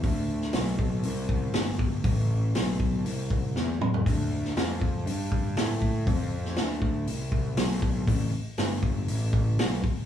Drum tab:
HH |o---o---o---o---|o---o---o-------|o---o---o---o---|o---o---o---o---|
SD |---oo-------o---|----o-------o---|---oo-------o---|---oo-------o---|
T2 |----------------|--------------o-|----------------|----------------|
FT |----------------|---------------o|----------------|----------------|
BD |o-----o---o---o-|o-----o---o-----|o-----o---o---o-|o-----o---o---o-|

HH |o---o---o---o---|
SD |----o-------o---|
T2 |----------------|
FT |----------------|
BD |o-----o---o---o-|